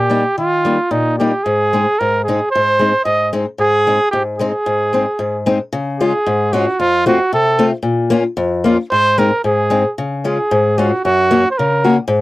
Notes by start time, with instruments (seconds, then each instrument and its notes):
Already playing: steel-string acoustic guitar A#2, trumpet G4
0.10 steel-string acoustic guitar G3 A#3 D#4
0.38 steel-string acoustic guitar D#3, trumpet F4
0.65 steel-string acoustic guitar G3 A#3 D#4
0.91 steel-string acoustic guitar A#2, trumpet D#4
1.18 steel-string acoustic guitar G3 A#3 D#4, trumpet G4
1.44 steel-string acoustic guitar G#2, trumpet G#4
1.73 steel-string acoustic guitar G#3 C4 D#4
1.99 steel-string acoustic guitar G#2, trumpet A#4
2.24 trumpet G#4
2.28 steel-string acoustic guitar G#3 C4 D#4
2.51 trumpet C5
2.55 steel-string acoustic guitar G#2
2.79 steel-string acoustic guitar G#3 C4 D#4
3.05 steel-string acoustic guitar G#2, trumpet D#5
3.33 steel-string acoustic guitar G#3 C4 D#4
3.58 steel-string acoustic guitar G#2, trumpet G#4
3.87 steel-string acoustic guitar G#3 C4 D#4
4.11 steel-string acoustic guitar G#2, trumpet G4
4.38 steel-string acoustic guitar G#3 C4 D#4, trumpet G#4
4.66 steel-string acoustic guitar G#2
4.93 steel-string acoustic guitar G#3 C4 D#4
5.19 steel-string acoustic guitar G#2
5.46 steel-string acoustic guitar G#3 C4 D#4
5.72 steel-string acoustic guitar C#3
5.99 steel-string acoustic guitar G#3 C#4 F4, trumpet G#4
6.26 steel-string acoustic guitar G#2
6.53 steel-string acoustic guitar G#3 C#4 F4, trumpet F#4
6.79 steel-string acoustic guitar F2, trumpet F4
7.06 steel-string acoustic guitar A3 C4 F4, trumpet F#4
7.33 steel-string acoustic guitar C3, trumpet A4
7.59 steel-string acoustic guitar A3 C4 F4
7.83 steel-string acoustic guitar A#2
8.10 steel-string acoustic guitar A#3 C#4 F4
8.37 steel-string acoustic guitar F2
8.64 steel-string acoustic guitar A#3 C#4 F4, trumpet F4
8.91 steel-string acoustic guitar G#2, trumpet C5
9.18 steel-string acoustic guitar G#3 C4 D#4, trumpet A#4
9.44 steel-string acoustic guitar G#2, trumpet G#4
9.70 steel-string acoustic guitar G#3 C4 D#4
9.98 steel-string acoustic guitar C#3
10.24 steel-string acoustic guitar G#3 C#4 F4, trumpet G#4
10.51 steel-string acoustic guitar G#2
10.78 steel-string acoustic guitar G#3 C#4 F4, trumpet F#4
11.04 steel-string acoustic guitar F#2, trumpet F#4
11.31 steel-string acoustic guitar A#3 C#4 F#4
11.51 trumpet C5
11.58 steel-string acoustic guitar C#3, trumpet A#4
11.84 steel-string acoustic guitar A#3 C#4 F#4
12.08 steel-string acoustic guitar G#2